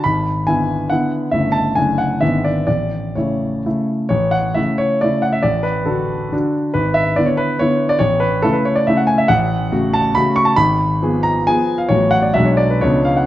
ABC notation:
X:1
M:3/4
L:1/16
Q:1/4=137
K:A
V:1 name="Grand piano"
b4 g4 f2 z2 | e2 a2 g2 f2 e2 d2 | d4 c6 z2 | c2 f2 e2 c2 d2 f e |
d2 B2 A6 z2 | B2 e2 d c B2 c3 d | c2 B2 A B c d e f g e | [K:F#m] f6 a2 b2 c' a |
_c'6 ^a2 _a3 =f | c2 f d e c d B c2 ^e f |]
V:2 name="Grand piano"
G,,,4 [D,B,E]4 [D,B,E]4 | [=G,,,C,A,E]4 [F,,,D,A,D]4 [^G,,,D,B,E]4 | A,,,4 [C,A,E]4 [C,A,E]4 | A,,,4 [C,A,E]4 [C,A,E]4 |
A,,,4 [D,DF]4 [D,DF]4 | G,,,4 [D,B,E]4 [D,B,E]4 | A,,,4 [C,A,E]4 [C,A,E]4 | [K:F#m] A,,,4 [C,A,F]4 [C,A,F]4 |
_A,,,4 [=F,_C_A]4 [F,CA]4 | [A,,,F,A,F]4 [B,,,F,G,D]4 [C,,^E,B,D]4 |]